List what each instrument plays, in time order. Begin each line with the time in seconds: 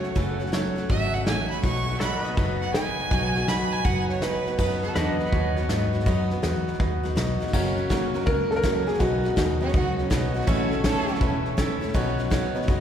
Already playing: steel-string acoustic guitar F#3 A3 C#4 F#4, grand piano F#4 A4 C#5, pedal steel guitar A4 C#5 F#5, fiddle C#5
0.03 snare
0.15 fingered electric bass F#1, steel-string acoustic guitar F#2 C#3 F#3 A3 C#4 F#4, grand piano F#4 A4 B4, kick, snare
0.40 steel-string acoustic guitar F#3 A3 C#4 F#4, snare
0.46 snare
0.52 steel-string acoustic guitar F#3 A3 C#4 F#4, grand piano F#4 A4 C#5, snare, hi-hat pedal
0.76 steel-string acoustic guitar F#3 A3 C#4 F#4, snare
0.89 fingered electric bass G#1, steel-string acoustic guitar F#2 C#3 F#3 A3 C#4 F#4, grand piano F#4 A4 D#5, fiddle E5, kick, snare
1.14 fiddle F#5, snare
1.26 fingered electric bass A1, steel-string acoustic guitar F#3 A3 C#4 F#4, grand piano F#4 A4 C#5, fiddle G#5, snare, hi-hat pedal
1.50 fiddle B5, snare
1.63 fingered electric bass B1, steel-string acoustic guitar B2 F#3 B3 D#4 F#4, grand piano F#4 B4 D#5, fiddle C#6, kick, snare
1.76 snare
1.87 steel-string acoustic guitar B3 D#4 F#4, snare
1.94 snare
2.00 steel-string acoustic guitar F#3 B3 D#4 F#4, grand piano F#4 B4 D#5, pedal steel guitar A4 C#5 F#5, fiddle B5, snare, hi-hat pedal
2.24 steel-string acoustic guitar B3 D#4 F#4, pedal steel guitar B4 D#5, snare
2.37 fingered electric bass F#1, steel-string acoustic guitar B2 F#3 B3 D#4 F#4, grand piano F#4 B4 D#5, kick, snare
2.61 fiddle F#5, snare
2.74 steel-string acoustic guitar F#3 B3 D#4 F#4, grand piano F#4 B4 D#5, fiddle G#5, snare, hi-hat pedal
2.99 snare
3.11 fingered electric bass B1, steel-string acoustic guitar B2 F#3 B3 D#4 F#4, grand piano F#4 B4 D#5, kick, snare
3.35 steel-string acoustic guitar B3 D#4 F#4, snare
3.47 steel-string acoustic guitar F#3 B3 D#4 F#4, grand piano F#4 B4 D#5, fiddle B5, snare, hi-hat pedal
3.72 fiddle G#5, snare
3.84 fingered electric bass F#1, steel-string acoustic guitar B2 F#3 B3 D#4 F#4, grand piano F#4 B4 D#5, fiddle F#5, kick, snare
4.09 fiddle C#5, snare
4.21 steel-string acoustic guitar F#3 B3 D#4 F#4, grand piano F#4 B4 D#5, fiddle B4, snare, hi-hat pedal
4.46 steel-string acoustic guitar B3 D#4 F#4, snare
4.58 fingered electric bass F#2, steel-string acoustic guitar B2 F#3 B3 D#4 F#4, grand piano D#4 F#4 B4 D#5, fiddle B4, kick, snare, crash
4.82 steel-string acoustic guitar B3 D#4 F#4, fiddle A4, snare
4.95 fingered electric bass E2, steel-string acoustic guitar F#3 B3 D#4 F#4, fiddle D4, grand piano D#4 F#4 B4 D#5, pedal steel guitar B4 D#5 F#5, snare, hi-hat pedal
5.20 fiddle B3, snare
5.26 snare
5.32 fingered electric bass D#2, grand piano D#4 F#4 B4 C#5, kick, snare
5.56 steel-string acoustic guitar B3 D#4 F#4, snare
5.69 fingered electric bass G#2, steel-string acoustic guitar F#3 B3 D#4 F#4, grand piano D#4 F#4 B4 D#5, snare, hi-hat pedal
5.93 steel-string acoustic guitar B3 D#4 F#4, snare
6.00 snare
6.06 fingered electric bass F#2, steel-string acoustic guitar B2 F#3 B3 D#4 F#4, grand piano D#4 F#4 B4 D#5, kick, snare
6.30 steel-string acoustic guitar B3 D#4 F#4, snare
6.42 fingered electric bass E2, steel-string acoustic guitar F#3 B3 D#4 F#4, grand piano D#4 F#4 B4 D#5, snare, hi-hat pedal
6.67 snare
6.74 snare
6.80 fingered electric bass D#2, grand piano D#4 F#4 B4 D#5, kick, snare
7.03 steel-string acoustic guitar B3 D#4 F#4, snare
7.16 fingered electric bass B1, steel-string acoustic guitar F#3 B3 D#4 F#4, grand piano D#4 F#4 B4 D#5, snare, hi-hat pedal
7.40 steel-string acoustic guitar B3 D#4 F#4, muted fingered electric bass stroke, snare
7.47 snare
7.53 fingered electric bass F#1, steel-string acoustic guitar F#2 C#3 F#3 A#3 C#4 F#4, grand piano C#4 F#4 A#4 C#5, upright piano F#4, kick, snare, crash
7.76 steel-string acoustic guitar F#3 A#3 C#4 F#4, snare
7.90 steel-string acoustic guitar F#2 C#3 F#3 A#3 C#4 F#4, grand piano C#4 F#4 A#4 C#5, kick, snare, hi-hat pedal
8.14 steel-string acoustic guitar F#3 A#3 C#4 F#4, grand piano C#4 F#4 A#4 C#5, snare
8.21 snare
8.26 fingered electric bass C#2, steel-string acoustic guitar F#3 A#3 C#4 F#4, grand piano C#4 F#4 A#4 C#5, upright piano A#4, kick, snare
8.51 upright piano A4, snare
8.56 upright piano A#4
8.63 steel-string acoustic guitar F#2 C#3 F#3 A#3 C#4 F#4, grand piano C#4 F#4 A#4 C#5, kick, snare, hi-hat pedal
8.87 steel-string acoustic guitar F#3 A#3 C#4 F#4, upright piano G#4, snare
8.94 snare
8.99 fingered electric bass B1, steel-string acoustic guitar B2 F#3 B3 D#4 F#4, grand piano D#4 F#4 B4 D#5, upright piano F#4, kick, snare
9.23 steel-string acoustic guitar B3 D#4 F#4, snare
9.36 fingered electric bass D#2, steel-string acoustic guitar B2 F#3 B3 D#4 F#4, grand piano D#4 F#4 B4 D#5, kick, snare, hi-hat pedal
9.61 steel-string acoustic guitar B3 D#4 F#4, fiddle C#4, grand piano D#4 F#4 B4 D#5, snare
9.68 snare
9.73 fingered electric bass C#2, steel-string acoustic guitar F#3 B3 D#4 F#4, grand piano D#4 F#4 B4 D#5, fiddle F#4, kick, snare
9.98 fiddle C#4, snare
10.10 fingered electric bass B1, steel-string acoustic guitar B2 F#3 B3 D#4 F#4, grand piano D#4 F#4 B4 D#5, kick, snare, hi-hat pedal
10.34 steel-string acoustic guitar B3 D#4 F#4, fiddle F#4, snare
10.41 snare
10.47 fingered electric bass A1, steel-string acoustic guitar A2 E3 A3 C#4 E4 A4, grand piano C#4 E4 A4 C#5, kick, snare
10.71 steel-string acoustic guitar A3 C#4 E4 A4, fiddle A4, snare
10.84 steel-string acoustic guitar A2 E3 A3 C#4 E4 A4, grand piano C#4 E4 A4 C#5, fiddle A4, kick, snare, hi-hat pedal
11.08 steel-string acoustic guitar A3 C#4 E4 A4, grand piano C#4 E4 A4 C#5, snare
11.15 snare
11.21 fingered electric bass E1, steel-string acoustic guitar A3 C#4 E4 A4, grand piano C#4 E4 A4 B4, kick, snare
11.45 snare
11.57 steel-string acoustic guitar A2 E3 A3 C#4 E4 A4, grand piano C#4 E4 A4 C#5, kick, snare, hi-hat pedal
11.81 steel-string acoustic guitar A3 C#4 E4 A4, snare
11.88 snare
11.94 fingered electric bass B1, steel-string acoustic guitar B2 D#3 F#3 B3 C#4 F#4, grand piano D#4 F#4 B4 C#5, kick, snare
12.18 steel-string acoustic guitar F#3 B3 C#4 F#4, snare
12.30 steel-string acoustic guitar B2 D#3 F#3 B3 C#4 F#4, grand piano D#4 F#4 B4 C#5, kick, snare, hi-hat pedal
12.55 steel-string acoustic guitar F#3 B3 C#4 F#4, grand piano D#4 F#4 B4 C#5, snare
12.62 snare
12.67 fingered electric bass F#1, steel-string acoustic guitar F#3 B3 C#4 F#4, grand piano D#4 F#4 B4 D#5, kick, snare